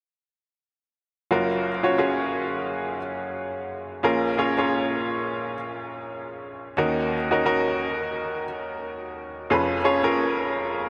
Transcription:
1.31 F#1 F#2 C#4 F4 F#4 A#4
1.83 C#4 F4 F#4 C#5
1.98 C#4 F4 F#4 G#4
4.03 A#1 A#2 C#4 F4 G#4 A#4
4.38 C#4 F4 G#4 C#5
4.57 C#4 F4 G#4 C#5
6.77 D#2 D#3 C#4 D#4 F#4 A#4
7.31 C#4 D#4 F#4 A#4
7.45 C#4 D#4 F#4 A#4
9.50 F1 F2 C#4 F4 G#4 B4
9.84 C#4 F4 G#4 C#5
10.03 C#4 F4 G#4 A#4

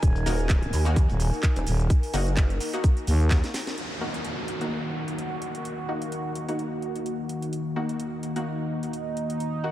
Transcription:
Already playing: D#4 A#4 G#5
0.03 D#1, kick, closed hi-hat, shaker
0.16 closed hi-hat, shaker
0.26 D#1 A#3 D#4 F#4, open hi-hat, shaker
0.39 closed hi-hat, shaker
0.49 kick, snare, clap, closed hi-hat, shaker
0.63 closed hi-hat, shaker
0.73 D#2, open hi-hat, shaker
0.86 A#3 D#4 F#4, closed hi-hat, shaker
0.96 kick, closed hi-hat, shaker
1.09 D#1, closed hi-hat, shaker
1.20 open hi-hat, shaker
1.33 shaker
1.43 kick, snare, clap, closed hi-hat, shaker
1.56 D#1, closed hi-hat, shaker
1.67 D#1, open hi-hat, shaker
1.80 closed hi-hat, shaker
1.90 kick, closed hi-hat, shaker
2.03 open hi-hat, shaker
2.13 F#1 A#3 D#4 F#4, open hi-hat, shaker
2.27 closed hi-hat, shaker
2.37 kick, snare, clap, closed hi-hat, shaker
2.50 closed hi-hat, shaker
2.60 open hi-hat, shaker
2.73 A#3 D#4 F#4, closed hi-hat, shaker
2.84 kick, closed hi-hat, shaker
2.97 closed hi-hat, shaker
3.07 D#2, snare, open hi-hat, shaker
3.20 closed hi-hat, shaker
3.31 A#3 D#4 F#4, kick, snare, clap, closed hi-hat, shaker
3.44 snare, closed hi-hat, shaker
3.54 snare, open hi-hat, shaker
3.67 snare, closed hi-hat, shaker
3.77 D#3 A#3 F#4, closed hi-hat, downlifter
4.01 A#3 D#4 F#4
4.14 closed hi-hat
4.25 closed hi-hat
4.48 closed hi-hat
4.61 A#3 D#4 F#4, closed hi-hat
5.08 closed hi-hat
5.18 closed hi-hat
5.42 closed hi-hat
5.55 closed hi-hat
5.65 closed hi-hat
5.89 A#3 D#4 F#4
6.02 closed hi-hat
6.12 closed hi-hat
6.35 closed hi-hat
6.48 A#3 D#4 F#4, closed hi-hat
6.59 closed hi-hat
6.82 closed hi-hat
6.96 closed hi-hat
7.06 closed hi-hat
7.29 closed hi-hat
7.42 closed hi-hat
7.53 D#4, closed hi-hat
7.76 A#3 D#4 F#4
7.89 closed hi-hat
8.00 closed hi-hat
8.23 closed hi-hat
8.36 A#3 D#4 F#4, closed hi-hat
8.83 closed hi-hat
8.93 closed hi-hat
9.17 closed hi-hat
9.30 closed hi-hat
9.40 closed hi-hat
9.64 A#3 D#4 F#4

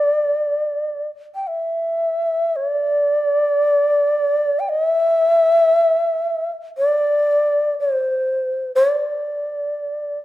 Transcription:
Already playing: D5
1.35 G5
1.47 E5
2.56 D5
4.59 G5
4.69 D#5
4.85 E5
6.78 D5
7.80 C5
8.75 D5

